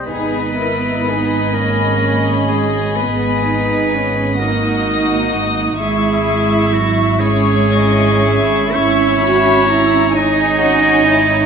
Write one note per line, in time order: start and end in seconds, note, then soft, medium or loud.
0.05 5.77 G#1 medium
0.05 1.52 B3 medium
0.05 0.52 D#4 medium
0.05 0.52 G#4 medium
0.05 1.55 B4 medium
0.05 4.35 D#5 medium
0.05 4.35 B5 medium
0.56 1.06 E4 medium
0.56 1.04 A#4 medium
1.05 1.54 D#4 medium
1.05 4.39 G#4 medium
1.53 2.49 A#3 medium
1.53 2.97 C#4 medium
1.53 2.31 A#4 medium
2.48 2.97 G#3 medium
2.48 2.97 G#4 medium
2.96 4.39 B3 medium
2.96 3.46 B3 medium
2.96 4.40 B4 medium
3.46 3.93 D#4 medium
3.94 4.39 C#4 medium
4.38 5.78 A#3 medium
4.38 5.81 D#4 medium
4.38 5.78 F#4 medium
4.38 5.52 A#4 medium
4.38 5.78 D#5 medium
4.38 5.77 D#6 medium
5.79 11.46 G#1 medium
5.79 6.72 G#3 medium
5.79 7.18 E4 medium
5.79 7.19 E4 medium
5.79 6.75 G#4 medium
5.79 7.19 E5 medium
5.79 7.18 C#6 medium
6.73 7.20 F#3 medium
6.73 7.21 F#4 medium
7.20 8.73 G#3 medium
7.20 8.73 C#4 medium
7.20 10.10 E4 medium
7.20 8.75 G#4 loud
7.20 7.71 C#5 medium
7.20 8.69 C#6 medium
7.72 8.23 D#5 medium
8.22 10.14 E5 medium
8.72 10.15 C#4 medium
8.72 9.21 E4 medium
8.72 10.15 C#5 loud
8.72 9.20 C#6 medium
9.21 9.68 F#4 medium
9.21 9.67 B5 medium
9.67 10.14 E4 medium
9.67 10.13 A#5 medium
10.13 10.60 D#4 medium
10.13 11.46 D#4 medium
10.13 10.59 G#4 medium
10.13 11.46 C#5 medium
10.13 11.46 D#5 loud
10.13 11.46 G#5 medium
10.59 11.05 C#4 medium
10.59 11.06 F#4 medium
11.05 11.46 D#4 medium
11.05 11.46 E4 medium